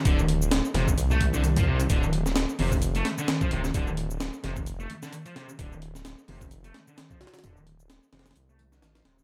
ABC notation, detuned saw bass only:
X:1
M:4/4
L:1/8
Q:"Swing 16ths" 1/4=130
K:Dm
V:1 name="Detuned saw bass" clef=bass
D,,,2 z F,,, C,,4 | D,,,2 z F,,,2 z2 D,,, | D,,,2 z F,,,2 z3 | D,,,2 z F,,,2 z3 |
D,,,2 z F,,, C,,2 A,,, D,,, |]